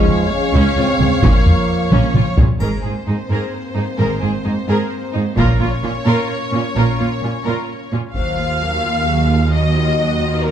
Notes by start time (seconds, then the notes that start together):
Already playing: F3 G#3 C#5 F5
0.07 taiko low-mid
0.30 G#3 C#4
0.54 C#2 C#4
0.76 C#2 G#3 C4 F4
0.99 C#2 G#4, taiko low-mid
1.22 A#1 A#2 F3 A#3 C#4, taiko
1.46 taiko low-mid
1.91 A#1 A#2 C#4, taiko high
2.14 A#1 A#2 F4, taiko mid
2.37 A#1 A#2 G#4, taiko low
2.58 G#1 G#2 A#3 C4 G#4 A#4 C5, taiko, triangle
2.83 G#2 G#4
3.07 G#2 D#4 G#4
3.29 G#2 G#4 A#4
3.76 G#2 D#4 G#4
3.98 G#1 G#2 G#4 A#4
4.21 G#2 G#4
4.44 G#2 D#4 G#4
4.68 G#2 G#4 A#4
5.14 G#2 D#4 G#4
5.37 A#1 A#2 A#3 C#4 F4 A#4 C#5, taiko
5.60 A#2 F4
5.83 A#2 C#4 F4
6.06 A#2 F4 A#4
6.53 A#2 C#4 F4
6.76 A#1 A#2 F4 A#4
6.99 A#2 F4
7.22 A#2 C#4 F4
7.45 A#2 F4 A#4
7.92 A#2 C#4 F4
8.13 D#2 F#3 F#4 C5 F5, taiko
8.39 A#3 F4
8.62 F#3 F#4 A#4
8.85 A#3 F4
9.07 F#3 F#4 G#4
9.30 A#3 F4
9.52 F#3 F#4 D#5
9.78 A#3 F4
10.00 F#3 F#4
10.23 A#3 F4
10.45 F#3 F#4 A#4